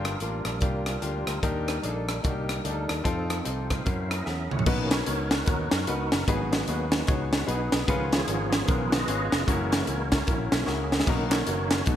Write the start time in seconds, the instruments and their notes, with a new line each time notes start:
Already playing: fingered electric bass G1, upright piano G2 A#3 D4 F4 G4, french horn section F3 G3 A#3 D5, tonewheel organ G3 D4 F4 A#4
0.05 cross-stick, closed hi-hat
0.20 fingered electric bass A1, upright piano A#3 D4 F4 A#4, closed hi-hat
0.45 fingered electric bass A#1, cross-stick, closed hi-hat
0.61 fingered electric bass C2, upright piano A#3 D4 F4 G4, kick, closed hi-hat
0.86 cross-stick, closed hi-hat
1.02 fingered electric bass D2, upright piano A3 D4 F4 G4, closed hi-hat
1.06 upright piano A#3
1.27 fingered electric bass D2, cross-stick, closed hi-hat
1.43 fingered electric bass D#2, french horn section D#3 G3, upright piano D#3 A#3 D4 D#4 G4, tonewheel organ G3 D4 D#4 A#4, kick, closed hi-hat
1.68 cross-stick, closed hi-hat
1.83 fingered electric bass A#1, upright piano A#3 D4 D#4 G#4, closed hi-hat
1.89 upright piano A4
2.08 cross-stick, closed hi-hat
2.23 fingered electric bass C2, upright piano A#3 D4 D#4 F#4, kick, closed hi-hat
2.29 upright piano G4
2.49 cross-stick, closed hi-hat
2.64 fingered electric bass D2, upright piano A#3 D4 D#4 G4, closed hi-hat
2.70 upright piano A4
2.89 fingered electric bass D#2, cross-stick, closed hi-hat
3.04 fingered electric bass F2, french horn section F3 A3 C4, tonewheel organ F3 C4 D#4 A4, upright piano C4 D#4 F4 A4, kick, closed hi-hat
3.30 cross-stick, closed hi-hat
3.45 fingered electric bass C2, upright piano C4 D#4 F4 A4, tonewheel organ G4 C5, closed hi-hat
3.70 tonewheel organ C5 F5, kick, cross-stick, closed hi-hat
3.85 fingered electric bass F#2, french horn section E3 F#3 A#3 C#4, tonewheel organ F#3 C#4 E4 A#4, upright piano C#4 E4 F#4 A#4, kick, closed hi-hat
4.09 tonewheel organ D#5, cross-stick, closed hi-hat
4.25 fingered electric bass E2, tonewheel organ C#4 E4 G#4 E5, upright piano A#4 F#5, snare
4.49 fingered electric bass D#2, upright piano E4 C#5, tonewheel organ F#5, mid tom
4.59 floor tom
4.65 fingered electric bass B1, upright piano B2 B3 D#4 F#4 A#4 B4, tonewheel organ D#3 A#3 C#4 D#4 F#4 A#4, kick, crash
4.91 tonewheel organ F#4 A#4 C#5, snare, closed hi-hat
5.06 fingered electric bass C#2, upright piano B3 D#4 F#4 A#4 C#5, closed hi-hat
5.31 tonewheel organ D#4 F#4 B4, snare, closed hi-hat
5.46 fingered electric bass D#2, upright piano B3 D#4 F#4 A#4 C#5, kick, closed hi-hat
5.71 fingered electric bass F#2, tonewheel organ D#4 F#4 A#4, snare, closed hi-hat
5.87 fingered electric bass C#2, upright piano B3 D#4 F#4 A#4 B4, closed hi-hat
6.12 fingered electric bass F#1, snare, closed hi-hat
6.21 tonewheel organ A#4
6.27 fingered electric bass G#1, upright piano G#2 B3 D#4 F#4 G#4 B4, tonewheel organ F#3 A#3 B3 D#4 G#4, kick, closed hi-hat
6.53 snare, closed hi-hat
6.67 fingered electric bass D#2, upright piano B3 D#4 F#4 G#4 B4, tonewheel organ D#4 F#4 B4, closed hi-hat
6.92 tonewheel organ F#3 A#3 B3, snare, closed hi-hat
7.07 fingered electric bass C#2, upright piano B3 D#4 F#4 G#4 C#5, kick, closed hi-hat
7.33 snare, closed hi-hat
7.47 fingered electric bass B1, upright piano B3 D#4 F#4 G#4 B4, tonewheel organ B3 D#4 G#4, closed hi-hat
7.72 fingered electric bass B1, snare, closed hi-hat
7.87 fingered electric bass C#2, upright piano C#3 B3 C#4 F4 G#4 B4, tonewheel organ D#3 F3 B3 F4 A#4, kick, closed hi-hat
8.12 tonewheel organ F4 G#4 C#5, snare, closed hi-hat
8.27 fingered electric bass G#1, upright piano B3 C#4 D#4 G#4 A#4, closed hi-hat
8.32 upright piano F4
8.52 snare, closed hi-hat
8.66 fingered electric bass B1, upright piano B3 C#4 F4 G#4 A#4, tonewheel organ F4 G#4 B4, kick, closed hi-hat
8.92 tonewheel organ D#3 F3 B3 G#4 B4 D#5, snare, closed hi-hat
9.07 fingered electric bass G#1, upright piano B3 C#4 F4 G#4 C#5, closed hi-hat
9.32 fingered electric bass F1, snare, closed hi-hat
9.46 fingered electric bass F#1, tonewheel organ E3 G#3 A#3 E4 A#4 C#5, upright piano A#3 C#4 E4 F#4 A#4, kick, closed hi-hat
9.72 snare, closed hi-hat
9.87 fingered electric bass C#2, upright piano A#3 C#4 E4 F#4 A#4, tonewheel organ E4 A#4 C#5, closed hi-hat
10.12 kick, snare, closed hi-hat
10.27 fingered electric bass A#1, upright piano A#3 C#4 E4 F#4 A#4, kick, closed hi-hat
10.51 fingered electric bass B1, tonewheel organ E3 G#3 A#3, snare, closed hi-hat
10.65 fingered electric bass C#2, upright piano A#3 C#4 E4 F#4 A#4, tonewheel organ C#4 E4 G#4, snare
10.92 snare
11.00 snare
11.04 fingered electric bass B1, upright piano B2 A#3 B3 D#4 F#4, tonewheel organ D#3 A#3 C#4 D#4 F#4 A#4, kick, crash
11.08 upright piano A#4
11.30 tonewheel organ F#4 A#4 C#5, snare, clap, closed hi-hat
11.47 fingered electric bass F#1, upright piano A#3 B3 D#4 F#4 A#4, closed hi-hat
11.71 snare, clap, closed hi-hat
11.85 fingered electric bass B1, upright piano B2 A3 B3 D#4 F#4 A4, tonewheel organ D#3 A3 C#4 D#4 F#4 B4, kick, closed hi-hat